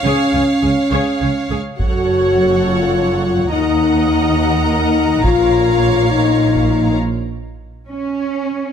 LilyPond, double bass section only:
\new Staff \with { instrumentName = "Double bass section" } { \clef bass \time 6/8 \key bes \minor \tempo 4. = 69 des,8 des,8 des,8 des,8 des,8 des,8 | ges,,2. | ees,2. | bes,,2. |
r2. | }